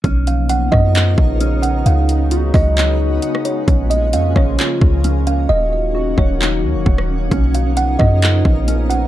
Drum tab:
HH |x-x-x---x---x-x-|x-x-x-o-x---x-x-|x-x-x---x---x-x-|----------------|
CP |--------x-------|--------x-------|--------x-------|--------x-------|
SD |------r---------|------r------r--|------r---------|-------------r--|
BD |o-----o---o-----|------o---------|o-----o---o-----|------o-----o---|

HH |x-x-x---x---x-x-|
CP |--------x-------|
SD |------r---------|
BD |o-----o---o-----|